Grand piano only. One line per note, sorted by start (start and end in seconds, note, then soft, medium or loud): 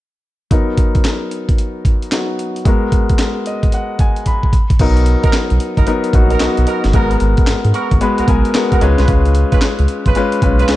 0.51 2.08 F#3 medium
0.51 2.09 B3 medium
0.51 2.09 D#4 medium
0.51 2.09 A#4 medium
2.12 2.65 F#3 medium
2.12 2.65 B3 soft
2.12 2.66 D#4 soft
2.12 2.65 F#4 medium
2.65 4.49 G#3 medium
2.65 4.49 B3 medium
2.65 4.50 F#4 medium
2.65 4.50 A#4 medium
3.47 3.71 D#5 medium
3.74 3.98 F#5 medium
4.00 4.25 G#5 medium
4.27 4.76 B5 medium
4.80 5.71 F#3 medium
4.80 5.71 B3 medium
4.80 5.72 D#4 medium
4.80 5.72 A#4 medium
5.87 6.10 F#3 medium
5.87 6.10 B3 medium
5.87 6.11 D#4 medium
5.87 6.11 A#4 loud
6.14 6.37 F#3 medium
6.14 6.37 B3 medium
6.14 6.38 D#4 medium
6.14 6.38 F#4 medium
6.40 6.87 F#3 medium
6.40 6.87 B3 medium
6.40 6.88 D#4 medium
6.40 6.88 F#4 medium
6.94 7.85 G#3 medium
6.94 7.85 B3 medium
6.94 7.86 F#4 medium
6.94 7.86 A#4 medium
7.75 7.99 C#6 medium
8.01 8.25 G#3 medium
8.01 8.25 B3 medium
8.01 8.25 F#4 medium
8.01 8.25 B4 loud
8.01 8.26 B5 medium
8.28 8.51 G#3 medium
8.28 8.52 B3 medium
8.28 8.52 F#4 medium
8.28 8.52 A#4 medium
8.28 8.53 G#5 medium
8.55 8.80 G#3 medium
8.55 8.82 B3 medium
8.55 8.82 F#4 medium
8.55 8.82 A#4 medium
8.55 8.80 F#5 medium
8.81 9.73 G#3 medium
8.81 9.73 C#4 medium
8.81 9.73 F4 medium
8.81 9.73 B4 loud
8.81 9.07 F5 medium
10.16 10.39 G#3 medium
10.16 10.39 C#4 medium
10.16 10.39 F4 medium
10.16 10.40 B4 loud
10.43 10.66 G#3 medium
10.43 10.66 C#4 medium
10.43 10.66 F4 medium
10.43 10.66 B4 medium
10.70 10.76 G#3 medium
10.70 10.76 C#4 medium
10.70 10.76 F4 medium
10.70 10.76 B4 medium